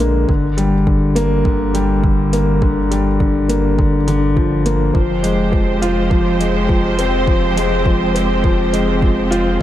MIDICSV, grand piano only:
0, 0, Header, 1, 2, 480
1, 0, Start_track
1, 0, Tempo, 582524
1, 238, Time_signature, 4, 2, 24, 8
1, 7931, End_track
2, 0, Start_track
2, 0, Title_t, "Grand piano"
2, 0, Program_c, 0, 0
2, 0, Control_c, 0, 64, 127
2, 0, Note_on_c, 0, 50, 65
2, 0, Note_on_c, 0, 56, 62
2, 0, Note_on_c, 0, 58, 72
2, 226, Note_off_c, 0, 58, 0
2, 238, Note_off_c, 0, 50, 0
2, 238, Note_on_c, 0, 50, 68
2, 247, Control_c, 0, 64, 0
2, 248, Note_off_c, 0, 56, 0
2, 375, Note_off_c, 0, 50, 0
2, 406, Control_c, 0, 64, 127
2, 472, Note_on_c, 0, 55, 67
2, 612, Note_off_c, 0, 55, 0
2, 715, Note_on_c, 0, 50, 68
2, 944, Note_off_c, 0, 50, 0
2, 951, Note_on_c, 0, 58, 91
2, 1091, Note_off_c, 0, 58, 0
2, 1195, Note_on_c, 0, 50, 74
2, 1424, Note_off_c, 0, 50, 0
2, 1433, Note_on_c, 0, 55, 68
2, 1572, Note_off_c, 0, 55, 0
2, 1678, Note_on_c, 0, 50, 66
2, 1906, Note_off_c, 0, 50, 0
2, 1920, Note_on_c, 0, 58, 72
2, 2147, Note_off_c, 0, 58, 0
2, 2158, Note_on_c, 0, 50, 71
2, 2295, Note_off_c, 0, 50, 0
2, 2398, Note_on_c, 0, 55, 67
2, 2535, Note_off_c, 0, 55, 0
2, 2638, Note_on_c, 0, 50, 71
2, 2866, Note_off_c, 0, 50, 0
2, 2876, Note_on_c, 0, 58, 66
2, 3105, Note_off_c, 0, 58, 0
2, 3120, Note_on_c, 0, 50, 73
2, 3256, Note_off_c, 0, 50, 0
2, 3357, Note_on_c, 0, 50, 89
2, 3586, Note_off_c, 0, 50, 0
2, 3595, Note_on_c, 0, 53, 70
2, 3825, Note_off_c, 0, 53, 0
2, 3835, Note_on_c, 0, 58, 69
2, 4065, Note_off_c, 0, 58, 0
2, 4069, Note_on_c, 0, 53, 73
2, 4089, Control_c, 0, 64, 0
2, 4210, Note_off_c, 0, 53, 0
2, 4227, Control_c, 0, 64, 127
2, 4308, Note_on_c, 0, 56, 65
2, 4450, Note_off_c, 0, 56, 0
2, 4548, Note_on_c, 0, 53, 63
2, 4781, Note_off_c, 0, 53, 0
2, 4794, Note_on_c, 0, 65, 89
2, 5024, Note_off_c, 0, 65, 0
2, 5028, Note_on_c, 0, 53, 75
2, 5261, Note_off_c, 0, 53, 0
2, 5275, Note_on_c, 0, 56, 65
2, 5413, Note_off_c, 0, 56, 0
2, 5511, Note_on_c, 0, 53, 68
2, 5742, Note_off_c, 0, 53, 0
2, 5756, Note_on_c, 0, 60, 73
2, 5985, Note_off_c, 0, 60, 0
2, 5995, Note_on_c, 0, 53, 72
2, 6133, Note_off_c, 0, 53, 0
2, 6234, Note_on_c, 0, 56, 69
2, 6373, Note_off_c, 0, 56, 0
2, 6478, Note_on_c, 0, 53, 73
2, 6706, Note_off_c, 0, 53, 0
2, 6714, Note_on_c, 0, 60, 67
2, 6944, Note_off_c, 0, 60, 0
2, 6957, Note_on_c, 0, 53, 78
2, 7094, Note_off_c, 0, 53, 0
2, 7194, Note_on_c, 0, 56, 67
2, 7333, Note_off_c, 0, 56, 0
2, 7437, Note_on_c, 0, 53, 66
2, 7665, Note_off_c, 0, 53, 0
2, 7669, Note_on_c, 0, 65, 94
2, 7902, Note_off_c, 0, 65, 0
2, 7929, Control_c, 0, 64, 0
2, 7931, End_track
0, 0, End_of_file